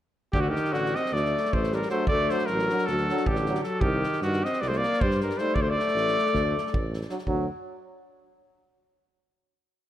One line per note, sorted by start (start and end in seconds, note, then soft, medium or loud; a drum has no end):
0.33 0.56 D2 medium
0.33 0.41 D3 medium
0.33 0.42 G4 loud
0.33 kick medium
0.40 0.51 D3 medium
0.40 0.51 F#4 medium
0.49 0.74 D#3 medium
0.49 0.74 G4 medium
0.56 snare soft
0.64 snare soft
0.72 0.95 A1 medium
0.72 0.97 D3 medium
0.72 0.97 F#4 medium
0.72 snare soft
0.85 snare soft
0.95 1.16 C4 medium
0.95 1.14 D#5 medium
0.95 snare soft
1.05 snare soft
1.12 1.34 D2 medium
1.12 1.55 A3 medium
1.12 1.55 D5 medium
1.12 snare soft
1.25 snare soft
1.37 snare soft
1.45 snare soft
1.52 1.82 A1 medium
1.52 1.74 A3 medium
1.52 1.76 C5 medium
1.52 kick medium
1.63 snare soft
1.72 1.90 G3 medium
1.72 1.90 A#4 medium
1.72 snare soft
1.82 snare soft
1.89 2.06 F#3 soft
1.89 2.06 A3 medium
1.89 2.07 D4 medium
1.89 2.06 C5 medium
1.89 snare soft
2.07 2.29 D2 medium
2.07 2.31 A3 medium
2.07 2.32 D5 loud
2.07 kick medium
2.28 2.46 F#3 medium
2.28 2.51 A3 medium
2.28 2.44 D4 medium
2.28 2.47 C5 medium
2.28 snare soft
2.38 snare soft
2.46 2.70 A1 medium
2.46 2.89 F#3 medium
2.46 2.87 A#4 loud
2.46 snare soft
2.59 snare soft
2.69 2.88 F#3 soft
2.69 2.85 D4 medium
2.69 snare soft
2.78 snare soft
2.86 3.09 D2 medium
2.86 3.29 F#3 medium
2.86 3.29 A4 loud
2.86 snare soft
2.97 snare soft
3.09 3.25 F#3 medium
3.09 3.25 D4 medium
3.09 snare soft
3.17 snare soft
3.26 3.57 A1 medium
3.26 3.64 D3 medium
3.26 3.63 G4 medium
3.26 kick medium
3.35 snare soft
3.46 3.62 F#3 medium
3.46 3.62 D4 medium
3.46 snare soft
3.55 snare soft
3.63 3.84 F#3 medium
3.63 3.82 A4 medium
3.63 snare soft
3.80 4.03 C2 medium
3.80 4.22 D#3 medium
3.80 4.21 G4 loud
3.80 kick medium
4.03 snare soft
4.13 snare soft
4.21 4.43 G2 medium
4.21 4.46 D#3 medium
4.21 4.46 F#4 medium
4.21 snare soft
4.33 snare soft
4.44 4.63 C4 medium
4.44 4.62 D#5 medium
4.44 snare soft
4.53 snare soft
4.60 4.84 C2 medium
4.60 4.71 G3 medium
4.60 4.69 D5 medium
4.60 snare soft
4.68 4.80 A3 medium
4.68 4.79 C5 medium
4.72 snare soft
4.77 5.05 A#3 medium
4.77 5.02 D5 loud
4.83 snare soft
4.93 snare soft
5.01 5.31 G2 medium
5.01 5.22 G3 medium
5.01 5.21 C5 medium
5.01 kick medium
5.11 snare soft
5.20 5.43 G3 medium
5.20 5.39 A#4 medium
5.20 snare soft
5.30 snare soft
5.38 5.55 G3 soft
5.38 5.60 A3 medium
5.38 5.54 D#4 medium
5.38 5.56 C5 medium
5.38 snare soft
5.54 5.77 D2 medium
5.54 5.63 D5 medium
5.54 kick medium
5.60 5.67 A3 medium
5.60 5.71 C5 medium
5.67 5.75 A3 medium
5.67 6.92 D5 loud
5.75 6.95 A3 medium
5.79 snare soft
5.87 snare soft
5.94 6.16 A1 medium
5.94 snare soft
6.07 snare soft
6.18 snare soft
6.26 snare soft
6.33 6.55 D2 medium
6.33 kick medium
6.33 snare soft
6.58 snare soft
6.66 snare soft
6.73 7.02 A1 medium
6.73 kick medium
6.93 snare soft
7.01 snare soft
7.09 7.17 F#3 soft
7.09 7.17 D4 medium
7.09 snare soft
7.18 snare soft
7.27 7.47 D2 medium
7.27 7.47 F#3 medium
7.27 7.47 D4 medium
7.27 kick medium